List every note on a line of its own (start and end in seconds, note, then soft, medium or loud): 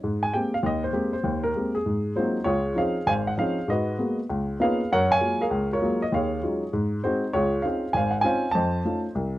0.04 0.29 G#2 medium
0.23 0.34 G#5 medium
0.34 0.53 G#3 soft
0.34 0.54 A#3 soft
0.34 0.54 C4 soft
0.34 0.54 G4 soft
0.34 0.53 G5 medium
0.54 0.64 F5 medium
0.63 0.89 D#2 medium
0.63 0.83 D#5 medium
0.84 1.12 C5 medium
0.93 1.14 G#3 soft
0.93 1.14 A#3 soft
0.93 1.14 C4 soft
0.93 1.14 G4 medium
1.13 1.44 C5 medium
1.24 1.50 D#2 medium
1.44 1.72 A#4 medium
1.55 1.75 G#3 soft
1.55 1.75 A#3 soft
1.55 1.75 C4 soft
1.55 1.76 G4 soft
1.75 2.13 G#4 medium
1.86 2.12 G#2 medium
2.16 2.36 F#3 medium
2.16 2.36 G#3 soft
2.16 2.36 A#3 soft
2.16 2.36 C4 soft
2.16 2.45 D#4 soft
2.16 2.36 F4 medium
2.16 2.46 F#4 soft
2.16 2.47 C5 medium
2.44 2.72 C#2 medium
2.44 3.03 F4 medium
2.44 2.78 G#4 medium
2.44 2.76 C#5 medium
2.75 2.96 F3 soft
2.75 2.96 C4 soft
2.75 2.96 C#4 soft
2.75 2.96 D#4 soft
2.75 3.07 C5 soft
2.75 3.08 F5 medium
2.80 3.35 G#4 soft
3.06 3.33 G#1 medium
3.06 3.39 C5 medium
3.06 3.37 F5 medium
3.06 3.12 G#5 loud
3.27 3.32 F#5 medium
3.37 3.58 F3 medium
3.37 3.57 C4 soft
3.37 3.58 C#4 medium
3.37 3.58 D#4 medium
3.37 3.67 G#4 medium
3.37 3.67 C5 medium
3.37 3.69 F5 medium
3.68 3.94 G#2 medium
3.68 3.98 F#4 medium
3.68 4.26 B4 medium
3.68 4.15 D#5 medium
3.99 4.19 G#3 soft
3.99 4.19 A#3 soft
3.99 4.19 B3 soft
3.99 4.19 F#4 soft
4.29 4.55 C#2 medium
4.60 4.80 A#3 medium
4.60 4.80 B3 medium
4.60 4.79 C#4 soft
4.60 4.80 D#4 soft
4.60 4.80 F4 medium
4.60 4.89 G#4 medium
4.60 4.89 B4 medium
4.60 4.89 F5 medium
4.92 5.17 F#2 medium
4.92 5.40 A#4 medium
4.92 5.09 C#5 medium
4.92 5.11 F#5 loud
5.11 5.66 C#5 medium
5.11 5.40 F5 medium
5.11 5.41 G#5 loud
5.21 5.40 F#3 soft
5.21 5.40 G#3 soft
5.21 5.41 A#3 soft
5.21 5.41 F4 soft
5.41 5.97 G#4 medium
5.41 5.71 A#4 medium
5.41 5.69 F5 medium
5.51 5.77 C#2 medium
5.73 5.80 F4 medium
5.73 6.10 A#4 medium
5.73 6.03 C#5 medium
5.82 6.01 F#3 medium
5.82 6.01 G#3 medium
5.82 6.01 A#3 soft
5.82 6.01 F4 medium
6.02 6.12 D#5 medium
6.12 6.38 D#2 medium
6.12 6.70 G#4 medium
6.12 6.70 C#5 medium
6.12 6.41 F5 medium
6.43 6.62 F#3 soft
6.43 6.63 G#3 soft
6.43 6.62 C#4 soft
6.43 6.63 D#4 soft
6.43 6.63 F4 medium
6.73 6.99 G#2 medium
7.04 7.24 G#3 medium
7.04 7.24 C4 medium
7.04 7.32 D#4 soft
7.04 7.24 F#4 medium
7.04 7.34 C5 medium
7.33 7.60 C#2 medium
7.33 7.64 F4 medium
7.33 7.64 G#4 medium
7.33 7.61 C#5 medium
7.62 7.84 C4 soft
7.62 7.84 C#4 soft
7.62 7.84 D#4 soft
7.62 7.84 F4 soft
7.62 8.21 G#4 soft
7.62 7.95 C5 medium
7.62 7.94 F5 medium
7.93 8.20 G#1 medium
7.93 8.24 C5 medium
7.93 8.24 F5 medium
7.93 8.13 G#5 medium
8.11 8.16 F#5 medium
8.21 8.44 C4 medium
8.21 8.44 C#4 medium
8.21 8.44 D#4 soft
8.21 8.44 F4 medium
8.21 8.53 F5 medium
8.21 8.51 G#5 medium
8.26 8.53 C5 medium
8.51 8.81 F2 medium
8.51 9.11 C5 medium
8.51 9.11 D#5 medium
8.51 8.99 A5 loud
8.85 9.05 A3 soft
8.85 9.05 C#4 soft
8.85 9.05 D#4 soft
8.85 9.05 F4 soft
9.15 9.38 C2 medium